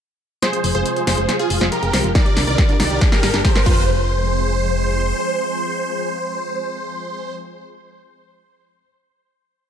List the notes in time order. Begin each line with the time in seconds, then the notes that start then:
0.42 C3 F3 G#3 F4 G#4 C5, snare, closed hi-hat, riser
0.53 G#4, closed hi-hat
0.64 F1 C5, open hi-hat
0.75 F1 C3 F3 G#3 F4 G#4 C5, closed hi-hat
0.86 G#4, closed hi-hat
0.96 C3 F3 G#3 F4 C5, closed hi-hat
1.07 F1 C3 F3 G#3 F4 G#4 C5, snare, open hi-hat
1.18 F1 G#4, closed hi-hat
1.29 C5, snare, closed hi-hat
1.39 C3 F3 G#3 F4 G#4, closed hi-hat
1.50 F1 G#4, open hi-hat
1.61 F1 C3 F3 G#3 F4 C5, snare, closed hi-hat
1.72 F4 G4 A#4, closed hi-hat
1.83 F1 G#4, closed hi-hat
1.93 C2 C3 F3 G#3 F4 C5, snare, open hi-hat
2.04 F1 F4, closed hi-hat
2.15 C3 D#3 D4 D#4 G4 A#4 D5, kick, snare, closed hi-hat
2.26 G4, closed hi-hat
2.37 C2 D4, snare, open hi-hat
2.47 C2 C3 D#3 D4 D#4 G4 A#4 D5
2.58 G4, kick, snare, closed hi-hat
2.69 C3 D#3 D4 G4, closed hi-hat
2.80 C2 C3 D#3 D4 D#4 G4 A#4 D5, snare, open hi-hat
2.91 C2 G4, closed hi-hat
3.01 D4, kick, snare, closed hi-hat
3.12 D3 G3 A#3 G4 A#4, snare, closed hi-hat
3.23 G1 A#4, snare, open hi-hat
3.34 G1 D3 G3 A#3 D4 G4, snare, closed hi-hat
3.44 G4 C5, kick, snare, closed hi-hat
3.55 G1 A#4, snare, closed hi-hat
3.66 F1 F3 G#3 C4 F4 G#4 C5, kick, crash